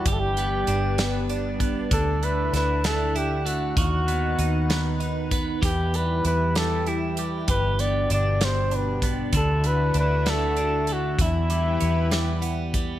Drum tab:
HH |xxxxxx|xxxxxx|xxxxxx|xxxxxx|
SD |---o--|--oo--|---o--|---o--|
BD |o----o|o-----|o----o|o-----|

HH |xxxxxx|xxxxxx|xxxxxx|
SD |---o--|---o--|---o--|
BD |o----o|o-----|o----o|